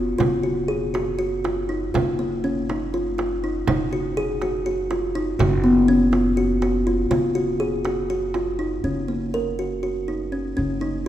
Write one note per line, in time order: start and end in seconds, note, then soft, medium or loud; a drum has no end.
0.00 0.16 F#1 medium
0.18 1.90 F#1 medium
0.18 0.33 F4 medium
0.18 frame drum medium
0.43 0.58 F#4 medium
0.68 0.83 G#4 medium
0.94 1.08 F#4 medium
0.94 frame drum soft
1.19 1.33 F#4 medium
1.19 frame drum soft
1.44 1.59 F4 medium
1.44 frame drum soft
1.69 1.83 D#4 medium
1.94 3.64 F#1 medium
1.94 2.08 F4 medium
1.94 frame drum medium
2.19 2.33 A#3 medium
2.44 2.58 C#4 medium
2.44 frame drum soft
2.69 2.83 D#4 medium
2.69 frame drum soft
2.94 3.08 F4 medium
3.18 3.32 F4 medium
3.18 frame drum soft
3.44 3.57 D#4 medium
3.44 frame drum soft
3.67 5.36 F#1 medium
3.67 3.82 D#4 medium
3.67 frame drum medium
3.93 4.06 F#4 medium
4.17 4.31 G#4 medium
4.17 frame drum soft
4.42 4.56 F#4 medium
4.42 frame drum soft
4.66 4.80 F#4 medium
4.91 5.04 F4 medium
4.91 frame drum soft
5.15 5.29 D#4 medium
5.15 frame drum soft
5.39 7.07 F#1 medium
5.39 5.53 F#4 medium
5.39 frame drum medium
5.64 5.77 B3 medium
5.88 6.02 C#4 medium
5.88 frame drum soft
6.13 6.26 F4 medium
6.13 frame drum soft
6.37 6.51 F#4 medium
6.62 6.76 F#4 medium
6.62 frame drum soft
6.86 7.00 F4 medium
6.86 frame drum soft
7.11 8.81 F#1 medium
7.11 7.25 F4 medium
7.11 frame drum medium
7.35 7.49 F#4 medium
7.60 7.74 G#4 medium
7.60 frame drum soft
7.85 7.99 F#4 medium
7.85 frame drum soft
8.10 8.24 F#4 medium
8.34 8.49 F4 medium
8.34 frame drum soft
8.59 8.73 D#4 medium
8.84 10.54 F#1 medium
8.84 8.98 C#4 medium
9.08 9.23 A#3 medium
9.34 9.48 A#4 medium
9.59 9.73 F#4 medium
9.83 9.97 F#4 medium
10.08 10.22 D#4 medium
10.32 10.47 C#4 medium
10.57 11.08 F#1 medium
10.57 10.71 C#4 medium
10.81 10.95 D#4 medium